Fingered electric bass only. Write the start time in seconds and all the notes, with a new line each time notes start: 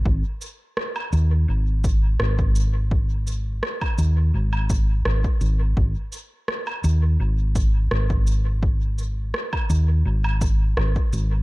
0.05 G#1
1.13 D#2
1.48 G#1
2.20 G#1
3.98 D#2
4.34 G#1
5.05 G#1
5.41 G#1
5.77 G#1
6.84 D#2
7.20 G#1
7.91 G#1
9.70 D#2
10.05 G#1
10.77 G#1
11.13 G#1